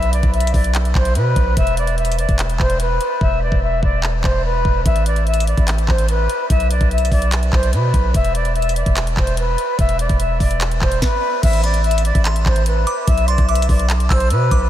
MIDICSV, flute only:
0, 0, Header, 1, 2, 480
1, 0, Start_track
1, 0, Tempo, 410959
1, 1831, Time_signature, 4, 2, 24, 8
1, 17165, End_track
2, 0, Start_track
2, 0, Title_t, "Flute"
2, 0, Program_c, 0, 73
2, 0, Note_on_c, 0, 76, 111
2, 117, Note_off_c, 0, 76, 0
2, 151, Note_on_c, 0, 74, 80
2, 359, Note_off_c, 0, 74, 0
2, 391, Note_on_c, 0, 76, 94
2, 599, Note_off_c, 0, 76, 0
2, 631, Note_on_c, 0, 74, 83
2, 839, Note_off_c, 0, 74, 0
2, 1113, Note_on_c, 0, 72, 83
2, 1320, Note_off_c, 0, 72, 0
2, 1351, Note_on_c, 0, 71, 95
2, 1802, Note_off_c, 0, 71, 0
2, 1835, Note_on_c, 0, 76, 118
2, 2041, Note_off_c, 0, 76, 0
2, 2075, Note_on_c, 0, 74, 88
2, 2282, Note_off_c, 0, 74, 0
2, 2307, Note_on_c, 0, 76, 91
2, 2517, Note_off_c, 0, 76, 0
2, 2549, Note_on_c, 0, 74, 81
2, 2758, Note_off_c, 0, 74, 0
2, 3033, Note_on_c, 0, 72, 84
2, 3240, Note_off_c, 0, 72, 0
2, 3275, Note_on_c, 0, 71, 87
2, 3725, Note_off_c, 0, 71, 0
2, 3753, Note_on_c, 0, 76, 114
2, 3960, Note_off_c, 0, 76, 0
2, 3994, Note_on_c, 0, 74, 84
2, 4201, Note_off_c, 0, 74, 0
2, 4239, Note_on_c, 0, 76, 95
2, 4443, Note_off_c, 0, 76, 0
2, 4476, Note_on_c, 0, 74, 91
2, 4682, Note_off_c, 0, 74, 0
2, 4949, Note_on_c, 0, 72, 80
2, 5158, Note_off_c, 0, 72, 0
2, 5192, Note_on_c, 0, 71, 97
2, 5643, Note_off_c, 0, 71, 0
2, 5667, Note_on_c, 0, 76, 106
2, 5877, Note_off_c, 0, 76, 0
2, 5910, Note_on_c, 0, 74, 89
2, 6118, Note_off_c, 0, 74, 0
2, 6152, Note_on_c, 0, 76, 93
2, 6359, Note_off_c, 0, 76, 0
2, 6390, Note_on_c, 0, 74, 79
2, 6599, Note_off_c, 0, 74, 0
2, 6872, Note_on_c, 0, 72, 73
2, 7080, Note_off_c, 0, 72, 0
2, 7115, Note_on_c, 0, 71, 86
2, 7565, Note_off_c, 0, 71, 0
2, 7587, Note_on_c, 0, 76, 109
2, 7797, Note_off_c, 0, 76, 0
2, 7832, Note_on_c, 0, 74, 79
2, 8040, Note_off_c, 0, 74, 0
2, 8075, Note_on_c, 0, 76, 91
2, 8281, Note_off_c, 0, 76, 0
2, 8312, Note_on_c, 0, 74, 86
2, 8520, Note_off_c, 0, 74, 0
2, 8794, Note_on_c, 0, 72, 86
2, 9000, Note_off_c, 0, 72, 0
2, 9032, Note_on_c, 0, 71, 91
2, 9483, Note_off_c, 0, 71, 0
2, 9514, Note_on_c, 0, 76, 120
2, 9721, Note_off_c, 0, 76, 0
2, 9755, Note_on_c, 0, 74, 89
2, 9961, Note_off_c, 0, 74, 0
2, 9987, Note_on_c, 0, 76, 92
2, 10197, Note_off_c, 0, 76, 0
2, 10229, Note_on_c, 0, 74, 81
2, 10438, Note_off_c, 0, 74, 0
2, 10713, Note_on_c, 0, 72, 81
2, 10920, Note_off_c, 0, 72, 0
2, 10958, Note_on_c, 0, 71, 86
2, 11406, Note_off_c, 0, 71, 0
2, 11434, Note_on_c, 0, 76, 114
2, 11640, Note_off_c, 0, 76, 0
2, 11676, Note_on_c, 0, 74, 85
2, 11882, Note_off_c, 0, 74, 0
2, 11917, Note_on_c, 0, 76, 93
2, 12123, Note_off_c, 0, 76, 0
2, 12154, Note_on_c, 0, 74, 89
2, 12361, Note_off_c, 0, 74, 0
2, 12630, Note_on_c, 0, 72, 80
2, 12839, Note_off_c, 0, 72, 0
2, 12872, Note_on_c, 0, 71, 97
2, 13323, Note_off_c, 0, 71, 0
2, 13348, Note_on_c, 0, 76, 108
2, 13557, Note_off_c, 0, 76, 0
2, 13592, Note_on_c, 0, 74, 93
2, 13799, Note_off_c, 0, 74, 0
2, 13833, Note_on_c, 0, 76, 98
2, 14040, Note_off_c, 0, 76, 0
2, 14070, Note_on_c, 0, 74, 83
2, 14278, Note_off_c, 0, 74, 0
2, 14552, Note_on_c, 0, 72, 78
2, 14759, Note_off_c, 0, 72, 0
2, 14793, Note_on_c, 0, 71, 83
2, 15244, Note_off_c, 0, 71, 0
2, 15268, Note_on_c, 0, 76, 113
2, 15477, Note_off_c, 0, 76, 0
2, 15509, Note_on_c, 0, 74, 83
2, 15718, Note_off_c, 0, 74, 0
2, 15752, Note_on_c, 0, 76, 90
2, 15960, Note_off_c, 0, 76, 0
2, 15992, Note_on_c, 0, 74, 84
2, 16199, Note_off_c, 0, 74, 0
2, 16474, Note_on_c, 0, 72, 86
2, 16681, Note_off_c, 0, 72, 0
2, 16711, Note_on_c, 0, 71, 98
2, 17163, Note_off_c, 0, 71, 0
2, 17165, End_track
0, 0, End_of_file